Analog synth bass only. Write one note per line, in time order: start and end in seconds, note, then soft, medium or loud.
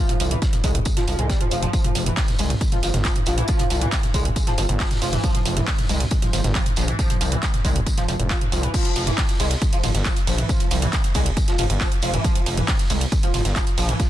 0.20 0.35 C2 medium
0.64 0.79 C2 medium
1.08 1.15 C2 medium
1.19 1.34 C2 medium
1.51 1.67 F1 medium
1.95 2.10 F1 loud
2.39 2.54 C2 loud
2.83 2.91 G1 medium
2.94 3.09 G1 medium
3.27 3.42 A#1 loud
3.70 3.86 C2 loud
4.14 4.29 C2 medium
4.58 4.66 G1 medium
4.69 4.84 G1 loud
5.02 5.17 F1 medium
5.46 5.61 F1 loud
5.89 6.05 C2 loud
6.33 6.41 G1 medium
6.44 6.59 G1 medium
6.77 6.92 A#1 medium
7.21 7.36 C2 medium
7.65 7.80 C2 medium
8.08 8.16 F1 loud
8.19 8.35 F1 medium
8.52 8.67 C2 loud
8.96 9.11 F1 loud
9.40 9.55 C2 loud
9.84 9.91 G1 medium
9.95 10.10 G1 medium
10.27 10.43 A#1 loud
10.71 10.86 C2 loud
11.15 11.30 C2 medium
11.59 11.66 G1 medium
11.70 11.85 G1 loud
12.03 12.18 F1 medium
12.46 12.62 F1 loud
12.90 13.05 C2 loud
13.34 13.42 G1 medium
13.45 13.60 G1 medium
13.78 13.93 A#1 loud